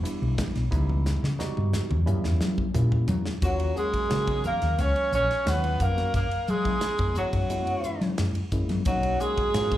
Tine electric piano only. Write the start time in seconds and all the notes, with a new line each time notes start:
0.03 G3 B3 D4 E4
0.71 G3 B3 D#4 E4
1.39 G3 B3 D#4 F#4
2.06 G3 A#3 C#4 E4
2.74 G3 A#3 C#4 E4
3.42 F#3 A#3 C#4 F4
3.76 F#3 A#3 C#4 G#4
4.09 F#3 A#3 C#4 F#4
5.45 F3 F#3 C#4 F4
5.96 F#3 A#3 C#4 F#4
6.65 G#3 A#3 C#4 E4
7.49 G#3 A#3 C#4 E4
8.52 G#3 A#3 C#4 E4
8.86 F#3 A#3 C#4 D#4
9.21 F#3 A#3 C#4 F#4
9.54 F#3 A#3 C#4 F4